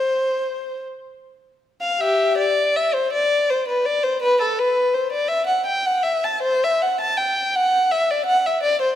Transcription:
0.00 0.83 C5 medium
1.81 1.99 F5 medium
2.00 2.35 G4 medium
2.00 2.38 E5 medium
2.37 2.74 D5 medium
2.76 2.94 E5 medium
2.94 3.12 C5 medium
3.13 3.48 D5 medium
3.50 3.68 C5 medium
3.68 3.85 B4 medium
3.85 4.03 D5 medium
4.03 4.21 C5 medium
4.22 4.39 B4 loud
4.41 4.58 A4 medium
4.59 4.94 B4 medium
4.94 5.12 C5 medium
5.12 5.29 D5 medium
5.28 5.47 E5 medium
5.47 5.65 F#5 medium
5.66 5.85 G5 medium
5.86 6.05 F#5 medium
6.03 6.23 E5 medium
6.24 6.44 A5 medium
6.42 6.62 C5 medium
6.64 6.82 E5 medium
6.82 7.00 F#5 medium
7.01 7.18 A5 medium
7.17 7.54 G5 medium
7.55 7.91 F#5 medium
7.92 8.09 E5 medium
8.11 8.28 D5 medium
8.26 8.44 F#5 medium
8.46 8.63 E5 medium
8.63 8.80 D5 medium
8.81 8.95 C5 medium

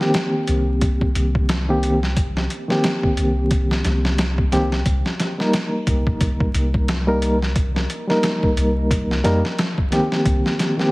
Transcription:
0.00 1.63 D#3 medium
0.00 1.64 A#3 medium
0.00 1.64 C4 medium
0.00 1.65 G4 medium
0.00 snare soft
0.14 snare loud
0.14 closed hi-hat medium
0.47 1.13 C2 medium
0.47 closed hi-hat medium
0.81 kick loud
0.81 closed hi-hat medium
1.01 kick medium
1.15 2.48 C2 loud
1.15 closed hi-hat medium
1.35 kick medium
1.49 snare loud
1.49 closed hi-hat medium
1.69 1.98 D#3 medium
1.69 1.98 A#3 medium
1.69 1.99 C4 medium
1.69 1.99 G4 medium
1.83 closed hi-hat medium
2.03 snare soft
2.17 kick loud
2.17 closed hi-hat medium
2.37 snare soft
2.50 closed hi-hat medium
2.68 4.48 D#3 medium
2.68 4.49 A#3 medium
2.68 4.49 C4 medium
2.68 4.50 G4 medium
2.68 snare soft
2.84 snare loud
2.84 closed hi-hat medium
3.03 kick medium
3.17 3.83 C2 medium
3.17 closed hi-hat medium
3.51 kick loud
3.51 closed hi-hat medium
3.71 snare soft
3.84 4.50 C2 medium
3.84 snare soft
3.84 closed hi-hat medium
4.05 snare soft
4.18 snare loud
4.18 closed hi-hat medium
4.38 kick medium
4.52 4.83 C2 medium
4.52 4.73 D#3 medium
4.52 4.74 A#3 medium
4.52 4.74 C4 medium
4.52 4.74 G4 medium
4.52 snare soft
4.52 closed hi-hat medium
4.72 snare medium
4.86 5.03 C2 medium
4.86 kick loud
4.86 closed hi-hat medium
5.06 snare soft
5.20 snare medium
5.20 closed hi-hat medium
5.38 7.03 G3 medium
5.38 7.03 A#3 medium
5.38 7.03 D#4 medium
5.38 7.04 A#4 medium
5.38 snare soft
5.53 snare loud
5.53 closed hi-hat medium
5.87 6.52 C2 medium
5.87 kick loud
5.87 closed hi-hat medium
6.07 kick medium
6.21 kick loud
6.21 closed hi-hat medium
6.40 kick medium
6.55 7.87 C2 loud
6.55 closed hi-hat medium
6.74 kick medium
6.88 snare loud
6.88 closed hi-hat medium
7.07 7.37 G3 medium
7.07 7.37 A#3 medium
7.07 7.38 D#4 medium
7.07 7.38 A#4 medium
7.22 closed hi-hat medium
7.42 snare soft
7.56 kick loud
7.56 closed hi-hat medium
7.76 snare soft
7.90 closed hi-hat medium
8.08 9.21 G3 medium
8.08 9.21 A#3 medium
8.08 9.22 D#4 medium
8.08 9.22 A#4 medium
8.08 snare soft
8.23 snare loud
8.23 closed hi-hat medium
8.43 kick medium
8.57 9.22 C2 medium
8.57 closed hi-hat medium
8.91 kick loud
8.91 closed hi-hat medium
9.11 snare soft
9.24 9.42 F2 loud
9.24 9.45 G3 medium
9.24 9.46 A#3 medium
9.24 9.46 D#4 medium
9.24 9.46 A#4 loud
9.24 snare soft
9.24 closed hi-hat medium
9.45 snare soft
9.58 snare loud
9.58 closed hi-hat medium
9.78 kick medium
9.91 10.73 D#3 medium
9.91 10.74 A#3 medium
9.91 10.74 C4 medium
9.91 10.75 G4 medium
9.91 snare soft
9.91 closed hi-hat medium
10.12 snare medium
10.26 10.43 C2 loud
10.26 kick loud
10.26 closed hi-hat medium
10.46 snare soft
10.59 snare medium
10.59 closed hi-hat medium
10.77 10.92 D#3 medium
10.77 10.92 A#3 medium
10.77 10.92 C4 medium
10.77 10.92 G4 medium
10.77 snare soft

